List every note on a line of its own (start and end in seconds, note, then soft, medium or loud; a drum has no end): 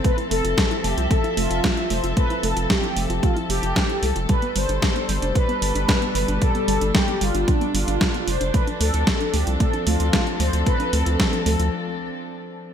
0.00 4.25 C4 medium
0.00 8.50 A4 medium
0.04 4.25 F3 medium
0.04 0.17 A3 medium
0.04 0.17 B4 loud
0.04 4.25 E5 medium
0.04 kick loud
0.04 closed hi-hat medium
0.18 0.23 E4 medium
0.18 closed hi-hat soft
0.31 0.41 F1 medium
0.31 0.40 A3 medium
0.31 0.86 A4 loud
0.31 open hi-hat loud
0.44 0.55 F1 medium
0.44 0.50 F4 medium
0.44 closed hi-hat medium
0.58 0.70 A3 medium
0.58 kick loud
0.58 snare loud
0.58 closed hi-hat soft
0.71 0.76 E4 medium
0.71 closed hi-hat soft
0.84 0.94 F1 medium
0.84 0.93 A3 medium
0.84 1.12 G4 loud
0.84 open hi-hat loud
0.97 1.08 C2 medium
0.97 1.03 F4 medium
0.97 closed hi-hat soft
1.10 1.23 A3 medium
1.10 1.35 A4 loud
1.10 kick loud
1.10 closed hi-hat soft
1.24 1.29 E4 medium
1.24 closed hi-hat soft
1.37 1.47 F1 medium
1.37 1.46 A3 medium
1.37 1.92 F4 loud
1.37 open hi-hat loud
1.50 1.61 F1 medium
1.50 1.56 F4 medium
1.50 closed hi-hat soft
1.64 1.76 A3 medium
1.64 kick loud
1.64 snare loud
1.64 closed hi-hat medium
1.77 1.82 E4 medium
1.77 closed hi-hat soft
1.90 2.01 F1 medium
1.90 1.99 A3 medium
1.90 2.02 C5 loud
1.90 open hi-hat loud
2.03 2.14 F1 medium
2.03 2.09 F4 medium
2.03 closed hi-hat medium
2.17 2.30 A3 medium
2.17 2.42 B4 loud
2.17 kick loud
2.17 closed hi-hat soft
2.30 2.35 E4 medium
2.30 closed hi-hat soft
2.43 2.54 F1 medium
2.43 2.52 A3 medium
2.43 2.71 A4 loud
2.43 open hi-hat loud
2.57 2.67 F1 medium
2.57 2.62 F4 medium
2.57 closed hi-hat soft
2.70 2.83 A3 medium
2.70 3.25 G4 loud
2.70 kick loud
2.70 snare loud
2.70 closed hi-hat soft
2.83 2.89 E4 medium
2.83 closed hi-hat soft
2.96 3.07 F1 loud
2.96 3.05 A3 medium
2.96 open hi-hat loud
3.09 3.20 F1 medium
3.09 3.15 F4 medium
3.09 closed hi-hat soft
3.23 3.36 A3 medium
3.23 3.35 F4 loud
3.23 kick loud
3.23 closed hi-hat soft
3.36 3.42 E4 medium
3.36 closed hi-hat soft
3.49 3.60 F1 medium
3.49 3.59 A3 medium
3.49 4.04 G4 loud
3.49 open hi-hat loud
3.63 3.73 F1 medium
3.63 3.68 F4 medium
3.63 closed hi-hat soft
3.76 3.89 A3 medium
3.76 kick loud
3.76 snare loud
3.76 closed hi-hat soft
3.89 3.95 E4 medium
3.89 closed hi-hat soft
4.03 4.13 C2 medium
4.03 4.12 A3 medium
4.03 4.15 A4 loud
4.03 open hi-hat loud
4.16 4.26 F1 medium
4.16 4.21 F4 medium
4.16 closed hi-hat soft
4.29 8.50 B2 medium
4.29 8.50 G3 medium
4.29 4.42 G3 medium
4.29 12.74 D4 medium
4.29 4.57 B4 loud
4.29 kick loud
4.29 closed hi-hat soft
4.42 4.48 B3 medium
4.42 closed hi-hat soft
4.56 4.66 G1 medium
4.56 4.65 G3 medium
4.56 5.38 C5 loud
4.56 open hi-hat loud
4.69 4.79 G1 medium
4.69 4.74 D4 medium
4.69 closed hi-hat soft
4.82 4.95 G3 medium
4.82 kick loud
4.82 snare loud
4.82 closed hi-hat soft
4.96 5.01 B3 medium
4.96 closed hi-hat soft
5.09 5.19 G1 medium
5.09 5.18 G3 medium
5.09 open hi-hat loud
5.22 5.32 F1 medium
5.22 5.28 D4 medium
5.22 closed hi-hat soft
5.35 5.48 G3 medium
5.35 5.61 B4 loud
5.35 kick loud
5.35 closed hi-hat soft
5.49 5.54 B3 medium
5.49 closed hi-hat soft
5.62 5.72 G1 medium
5.62 5.71 G3 medium
5.62 6.14 B4 loud
5.62 open hi-hat loud
5.75 5.85 G1 medium
5.75 5.81 D4 medium
5.75 closed hi-hat soft
5.88 6.01 G3 medium
5.88 kick loud
5.88 snare loud
5.88 closed hi-hat soft
6.02 6.07 B3 medium
6.02 closed hi-hat soft
6.15 6.25 G1 medium
6.15 6.24 G3 medium
6.15 6.40 B4 loud
6.15 open hi-hat loud
6.28 6.39 G1 medium
6.28 6.34 D4 medium
6.28 closed hi-hat soft
6.42 6.54 G3 medium
6.42 6.67 A4 loud
6.42 kick loud
6.42 closed hi-hat medium
6.55 6.60 B3 medium
6.55 closed hi-hat soft
6.68 6.78 G1 medium
6.68 6.77 G3 medium
6.68 6.96 A4 loud
6.68 open hi-hat loud
6.81 6.92 G1 medium
6.81 6.87 D4 medium
6.81 closed hi-hat medium
6.95 7.07 G3 medium
6.95 7.22 G4 loud
6.95 kick loud
6.95 snare loud
6.95 closed hi-hat medium
7.08 7.13 B3 medium
7.08 closed hi-hat soft
7.21 7.31 G1 medium
7.21 7.30 G3 medium
7.21 7.49 F4 medium
7.21 open hi-hat loud
7.34 7.45 G1 medium
7.34 7.40 D4 medium
7.34 closed hi-hat soft
7.48 7.61 G3 medium
7.48 7.75 D4 medium
7.48 kick loud
7.48 closed hi-hat soft
7.61 7.66 B3 medium
7.61 closed hi-hat soft
7.74 7.85 G1 medium
7.74 7.83 G3 medium
7.74 8.29 F4 loud
7.74 open hi-hat loud
7.88 7.98 G1 medium
7.88 7.93 D4 medium
7.88 closed hi-hat medium
8.01 8.14 G3 medium
8.01 kick loud
8.01 snare loud
8.01 closed hi-hat medium
8.14 8.20 B3 medium
8.14 closed hi-hat soft
8.27 8.38 F1 medium
8.27 8.36 G3 medium
8.27 8.55 C5 loud
8.27 open hi-hat loud
8.41 8.51 F1 medium
8.41 8.46 D4 medium
8.41 closed hi-hat medium
8.54 12.74 F3 medium
8.54 8.67 A3 medium
8.54 12.74 C4 medium
8.54 12.74 A4 medium
8.54 8.66 B4 loud
8.54 kick loud
8.54 closed hi-hat medium
8.67 8.73 D4 medium
8.67 closed hi-hat soft
8.80 8.91 D2 medium
8.80 8.89 A3 medium
8.80 9.35 A4 loud
8.80 open hi-hat loud
8.94 9.04 D2 medium
8.94 8.99 F4 medium
8.94 closed hi-hat medium
9.07 9.20 A3 medium
9.07 kick loud
9.07 snare loud
9.07 closed hi-hat medium
9.20 9.26 D4 medium
9.20 closed hi-hat soft
9.34 9.44 D2 loud
9.34 9.43 A3 medium
9.34 9.46 G4 medium
9.34 open hi-hat loud
9.47 9.57 C2 medium
9.47 9.52 F4 medium
9.47 closed hi-hat medium
9.60 9.73 A3 medium
9.60 9.87 A4 loud
9.60 kick loud
9.60 closed hi-hat soft
9.73 9.79 D4 medium
9.73 closed hi-hat soft
9.87 9.97 D2 medium
9.87 9.96 A3 medium
9.87 10.41 F4 medium
9.87 open hi-hat loud
10.00 10.10 D2 medium
10.00 10.06 F4 medium
10.00 closed hi-hat medium
10.13 10.26 A3 medium
10.13 kick loud
10.13 snare loud
10.13 closed hi-hat medium
10.27 10.32 D4 medium
10.27 closed hi-hat soft
10.40 10.50 D2 medium
10.40 10.49 A3 medium
10.40 10.67 C5 medium
10.40 open hi-hat loud
10.53 10.63 D2 medium
10.53 10.59 F4 medium
10.53 closed hi-hat medium
10.66 10.79 A3 medium
10.66 10.94 B4 loud
10.66 kick loud
10.66 closed hi-hat medium
10.80 10.85 D4 medium
10.80 closed hi-hat soft
10.93 11.03 D2 medium
10.93 11.02 A3 medium
10.93 11.42 A4 loud
10.93 open hi-hat loud
11.06 11.17 D2 medium
11.06 11.12 F4 medium
11.06 closed hi-hat medium
11.19 11.32 A3 medium
11.19 kick loud
11.19 snare loud
11.19 closed hi-hat medium
11.33 11.38 D4 medium
11.33 closed hi-hat soft
11.46 11.56 D2 medium
11.46 11.55 A3 medium
11.46 11.71 A4 medium
11.46 open hi-hat loud
11.59 11.70 D2 medium
11.59 11.65 F4 medium
11.59 closed hi-hat medium